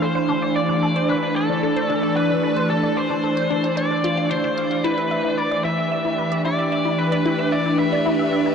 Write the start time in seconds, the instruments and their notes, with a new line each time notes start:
Already playing: ambient pad E3 A3 D4 G4 C5
0.02 synth arpeggio sound A4, lead electric guitar C5
0.15 synth arpeggio sound C5
0.29 synth arpeggio sound D4
0.42 synth arpeggio sound D5
0.56 synth arpeggio sound D5, lead electric guitar D5
0.69 synth arpeggio sound D4
0.83 synth arpeggio sound A4
0.96 synth arpeggio sound C5
1.04 ambient pad D5
1.09 synth arpeggio sound D4, lead electric guitar B4
1.23 synth arpeggio sound D5
1.36 lead electric guitar A4, synth arpeggio sound D5
1.50 synth arpeggio sound D4
1.63 synth arpeggio sound A4
1.76 synth arpeggio sound C5
1.90 synth arpeggio sound D4
2.03 synth arpeggio sound D5
2.16 lead electric guitar B4, synth arpeggio sound D5
2.30 synth arpeggio sound D4
2.43 synth arpeggio sound A4
2.56 synth arpeggio sound C5
2.70 synth arpeggio sound D4, lead electric guitar A4
2.83 synth arpeggio sound D5
2.97 lead electric guitar C5, synth arpeggio sound D5
3.10 synth arpeggio sound D4
3.24 synth arpeggio sound A4
3.37 synth arpeggio sound C5
3.50 synth arpeggio sound D4
3.64 synth arpeggio sound D5
3.77 synth arpeggio sound D5, lead electric guitar D5
3.91 synth arpeggio sound D4
4.04 synth arpeggio sound F4
4.17 synth arpeggio sound F4
4.31 synth arpeggio sound D4, lead electric guitar C5
4.44 synth arpeggio sound D4
4.58 synth arpeggio sound F5
4.71 synth arpeggio sound F5
4.84 ambient pad E3, synth arpeggio sound E4, lead electric guitar B4
4.98 synth arpeggio sound E5
5.11 synth arpeggio sound E5
5.25 ambient pad A3, synth arpeggio sound E4
5.38 synth arpeggio sound B4, lead electric guitar D5
5.51 synth arpeggio sound D5
5.56 ambient pad G4
5.63 ambient pad D4, synth arpeggio sound E4, lead electric guitar E5
5.78 synth arpeggio sound E5
5.92 synth arpeggio sound E5
6.05 synth arpeggio sound E4
6.18 synth arpeggio sound B4
6.32 synth arpeggio sound D5
6.43 synth arpeggio sound E4, ambient pad B4, lead electric guitar D5
6.59 synth arpeggio sound E5
6.72 synth arpeggio sound E5
6.85 synth arpeggio sound E4
6.99 lead electric guitar B4, synth arpeggio sound B4
7.12 synth arpeggio sound D5
7.25 synth arpeggio sound E4
7.39 synth arpeggio sound E5
7.52 lead electric guitar D5, synth arpeggio sound E5
7.66 synth arpeggio sound E4
7.79 synth arpeggio sound B4, lead electric guitar E5
7.92 synth arpeggio sound D5
8.06 synth arpeggio sound E4
8.19 synth arpeggio sound E5
8.33 synth arpeggio sound E5
8.46 synth arpeggio sound E4